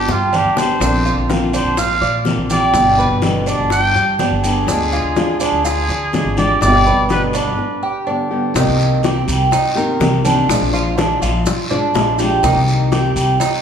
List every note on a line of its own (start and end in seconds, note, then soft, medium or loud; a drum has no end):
0.00 0.13 G4 loud
0.08 0.43 G2 medium
0.08 0.38 F4 medium
0.08 0.32 G4 medium
0.08 low bongo medium
0.08 high conga soft
0.08 maracas soft
0.33 0.56 D3 medium
0.33 0.56 G3 medium
0.33 0.56 B3 medium
0.33 0.80 D4 medium
0.33 0.55 G4 soft
0.33 0.60 G4 medium
0.33 high conga medium
0.33 short guiro medium
0.33 maracas soft
0.45 0.79 G1 medium
0.56 0.79 D3 medium
0.56 0.80 G3 medium
0.56 0.81 B3 medium
0.56 0.80 G4 medium
0.56 1.30 C5 medium
0.56 low bongo medium
0.56 high conga soft
0.56 short guiro medium
0.56 maracas medium
0.80 1.15 A#1 loud
0.80 1.27 D3 medium
0.80 1.28 A#3 medium
0.80 1.29 C4 medium
0.80 1.05 D4 medium
0.80 1.29 F4 medium
0.80 high bongo medium
0.80 high conga soft
0.80 long guiro medium
0.80 maracas medium
1.05 1.52 F4 medium
1.05 high bongo soft
1.05 high conga soft
1.05 maracas soft
1.17 1.63 A#1 medium
1.28 1.76 D3 medium
1.28 1.77 A#3 medium
1.28 1.77 C4 medium
1.28 1.77 F4 medium
1.28 high bongo medium
1.28 high conga medium
1.28 short guiro medium
1.28 maracas soft
1.53 1.77 D4 medium
1.53 1.80 C5 medium
1.53 high bongo soft
1.53 high conga soft
1.53 short guiro medium
1.53 maracas medium
1.65 2.00 A#1 medium
1.77 2.01 F4 medium
1.77 2.27 F5 loud
1.77 muted nylon-string guitar stroke medium
1.77 high bongo medium
1.77 high conga soft
1.77 long guiro medium
1.77 maracas medium
2.01 2.36 A#2 medium
2.01 2.49 D5 medium
2.01 high bongo soft
2.01 high conga soft
2.01 maracas soft
2.25 2.49 D3 soft
2.25 2.50 A#3 medium
2.25 2.50 C4 medium
2.25 2.49 F4 medium
2.25 high bongo soft
2.25 low bongo medium
2.25 high conga medium
2.25 short guiro medium
2.25 maracas soft
2.37 2.72 A#1 medium
2.50 2.74 A#3 medium
2.50 2.74 C4 medium
2.50 2.74 F4 medium
2.50 2.97 G4 medium
2.50 3.20 D5 loud
2.50 high conga medium
2.50 short guiro medium
2.50 maracas medium
2.74 3.09 G1 loud
2.74 3.21 B2 medium
2.74 3.22 D3 medium
2.74 3.22 G3 medium
2.74 3.23 B3 medium
2.74 3.23 G4 medium
2.74 high bongo medium
2.74 high conga soft
2.74 long guiro medium
2.74 maracas medium
2.98 3.46 B4 medium
2.98 high bongo soft
2.98 high conga soft
2.98 maracas soft
3.11 3.57 G1 medium
3.22 3.70 B2 medium
3.22 3.70 D3 medium
3.22 3.71 G3 medium
3.22 3.71 B3 medium
3.22 3.71 G4 medium
3.22 high bongo medium
3.22 high conga loud
3.22 short guiro medium
3.22 maracas soft
3.46 3.94 D4 medium
3.46 3.71 D5 medium
3.46 high bongo soft
3.46 high conga soft
3.46 short guiro medium
3.46 maracas medium
3.59 3.94 G1 medium
3.70 4.17 G5 loud
3.70 muted nylon-string guitar stroke medium
3.70 high bongo medium
3.70 high conga soft
3.70 long guiro medium
3.70 maracas medium
3.95 4.30 G2 medium
3.95 4.19 G4 medium
3.95 high bongo soft
3.95 high conga soft
3.95 maracas soft
4.19 4.43 D3 soft
4.19 4.43 G3 medium
4.19 4.43 B3 medium
4.19 4.67 D4 medium
4.19 4.43 G4 medium
4.19 high bongo soft
4.19 low bongo medium
4.19 high conga medium
4.19 short guiro medium
4.19 maracas soft
4.31 4.66 G1 medium
4.44 4.67 D3 medium
4.44 4.68 G3 medium
4.44 4.68 B3 medium
4.44 4.67 G4 medium
4.44 5.37 G#4 medium
4.44 high conga soft
4.44 short guiro medium
4.44 maracas medium
4.67 5.02 D2 loud
4.67 5.15 D3 medium
4.67 5.16 G#3 medium
4.67 4.92 D4 medium
4.67 5.16 D4 medium
4.67 5.17 F4 medium
4.67 high bongo medium
4.67 high conga soft
4.67 long guiro medium
4.67 maracas medium
4.92 5.40 F4 medium
4.92 high bongo soft
4.92 high conga soft
4.92 maracas soft
5.16 5.63 D3 medium
5.16 5.64 G#3 medium
5.16 5.64 D4 medium
5.16 5.65 F4 medium
5.16 high bongo medium
5.16 high conga medium
5.16 short guiro medium
5.16 maracas soft
5.40 5.64 D4 medium
5.40 6.34 G#4 medium
5.40 high bongo soft
5.40 high conga soft
5.40 short guiro medium
5.40 maracas medium
5.52 5.87 D2 medium
5.65 5.88 F4 medium
5.65 muted nylon-string guitar stroke medium
5.65 high bongo medium
5.65 high conga soft
5.65 long guiro medium
5.65 maracas medium
5.89 6.24 D3 medium
5.89 6.36 D5 medium
5.89 high bongo soft
5.89 high conga soft
5.89 maracas soft
6.13 6.36 D3 medium
6.13 6.37 G#3 soft
6.13 6.37 D4 medium
6.13 6.35 F4 medium
6.13 high bongo soft
6.13 low bongo medium
6.13 high conga medium
6.13 short guiro medium
6.13 maracas soft
6.24 6.60 G#1 medium
6.37 6.61 G#3 medium
6.37 6.61 D4 medium
6.37 6.60 F4 medium
6.37 6.85 G4 medium
6.37 6.61 D5 medium
6.37 high conga medium
6.37 short guiro medium
6.37 maracas medium
6.61 6.96 G1 loud
6.61 7.09 B2 medium
6.61 7.10 D3 medium
6.61 7.10 G3 medium
6.61 7.10 B3 medium
6.61 7.10 G4 medium
6.61 7.07 D5 loud
6.61 high bongo medium
6.61 high conga soft
6.61 long guiro medium
6.61 maracas medium
6.86 7.33 B4 medium
6.86 high bongo soft
6.86 high conga soft
6.86 maracas soft
6.97 7.44 G1 medium
7.09 7.56 B2 medium
7.09 7.57 D3 medium
7.09 7.57 G3 medium
7.09 7.58 B3 medium
7.09 7.58 G4 medium
7.09 7.22 B4 loud
7.09 high bongo medium
7.09 high conga medium
7.09 short guiro medium
7.09 maracas soft
7.33 7.82 D4 medium
7.33 8.04 B4 medium
7.33 high bongo soft
7.33 high conga soft
7.33 short guiro medium
7.33 maracas medium
7.45 7.58 G1 medium
7.58 muted nylon-string guitar stroke medium
7.83 8.06 G4 medium
8.07 8.30 D3 medium
8.07 8.31 G3 medium
8.07 8.30 B3 medium
8.07 8.54 D4 medium
8.07 8.29 G4 medium
8.31 8.56 D3 medium
8.31 8.55 G3 medium
8.31 8.55 B3 medium
8.31 8.54 G4 medium
8.54 8.66 C2 loud
8.54 9.03 C3 medium
8.54 9.01 D#3 medium
8.54 9.02 A#3 medium
8.54 9.03 C4 medium
8.54 9.03 D#4 medium
8.54 9.03 G4 medium
8.54 high bongo medium
8.54 high conga soft
8.54 long guiro medium
8.54 maracas medium
8.67 9.25 C2 loud
8.80 high conga soft
8.80 maracas soft
9.03 9.50 D#3 medium
9.03 9.50 A#3 soft
9.03 9.51 C4 medium
9.03 9.51 G4 medium
9.03 high bongo medium
9.03 high conga medium
9.03 short guiro medium
9.03 maracas soft
9.28 9.51 C2 loud
9.28 high conga soft
9.28 short guiro medium
9.28 maracas medium
9.51 9.76 D#4 medium
9.51 muted nylon-string guitar stroke medium
9.51 high bongo medium
9.51 high conga soft
9.51 long guiro medium
9.51 maracas medium
9.75 9.99 D#3 medium
9.75 10.00 A#3 medium
9.75 10.00 C4 medium
9.75 9.99 G4 medium
9.75 10.24 A#4 medium
9.75 high conga soft
9.75 maracas soft
10.00 10.47 C2 loud
10.00 10.24 D#3 medium
10.00 10.24 A#3 medium
10.00 10.24 C4 medium
10.00 10.23 G4 medium
10.00 high bongo medium
10.00 low bongo medium
10.00 high conga medium
10.00 short guiro medium
10.00 maracas soft
10.24 10.48 D#3 medium
10.24 10.49 A#3 medium
10.24 10.49 C4 medium
10.24 10.72 D4 medium
10.24 10.48 G4 medium
10.24 high conga medium
10.24 short guiro medium
10.24 maracas medium
10.49 10.61 A#1 loud
10.49 10.96 F3 medium
10.49 10.96 G#3 medium
10.49 10.97 D4 medium
10.49 10.98 F4 medium
10.49 high bongo medium
10.49 high conga soft
10.49 long guiro medium
10.49 maracas medium
10.61 11.19 A#1 medium
10.73 10.97 F4 medium
10.73 high bongo soft
10.73 high conga soft
10.73 maracas soft
10.97 11.44 F3 soft
10.97 11.45 G#3 medium
10.97 11.21 D4 medium
10.97 11.45 D4 medium
10.97 11.46 F4 medium
10.97 high bongo medium
10.97 high conga loud
10.97 short guiro medium
10.97 maracas soft
11.22 11.45 A#1 loud
11.22 11.69 F4 medium
11.22 high bongo soft
11.22 high conga soft
11.22 short guiro medium
11.22 maracas medium
11.45 muted nylon-string guitar stroke medium
11.45 high bongo medium
11.45 high conga soft
11.45 low conga medium
11.45 long guiro medium
11.45 maracas medium
11.70 11.95 G#3 medium
11.70 12.18 D4 medium
11.70 11.95 D4 medium
11.70 11.94 F4 medium
11.70 high bongo soft
11.70 high conga soft
11.70 low conga medium
11.70 maracas soft
11.94 12.41 A#1 loud
11.94 12.18 F3 medium
11.94 12.19 G#3 medium
11.94 12.19 D4 medium
11.94 12.19 F4 medium
11.94 high bongo medium
11.94 low bongo medium
11.94 high conga soft
11.94 short guiro medium
11.94 maracas soft
12.19 12.44 G#3 medium
12.19 12.43 D4 medium
12.19 12.43 F4 medium
12.19 12.42 G4 medium
12.19 high conga soft
12.19 short guiro medium
12.19 maracas medium
12.43 12.55 C2 loud
12.43 12.91 C3 medium
12.43 12.90 D#3 medium
12.43 12.91 A#3 medium
12.43 12.91 C4 medium
12.43 12.90 D#4 medium
12.43 12.92 G4 medium
12.43 high bongo medium
12.43 high conga soft
12.43 long guiro medium
12.43 maracas medium
12.55 13.13 C2 loud
12.68 high conga soft
12.68 maracas soft
12.91 13.39 D#3 soft
12.91 13.39 A#3 medium
12.91 13.39 C4 soft
12.91 13.39 G4 medium
12.91 high bongo medium
12.91 high conga medium
12.91 short guiro medium
12.91 maracas soft
13.16 13.39 C2 loud
13.16 high conga soft
13.16 short guiro medium
13.16 maracas medium
13.40 13.62 D#4 medium
13.40 muted nylon-string guitar stroke medium
13.40 high bongo medium
13.40 high conga soft
13.40 long guiro medium
13.40 maracas medium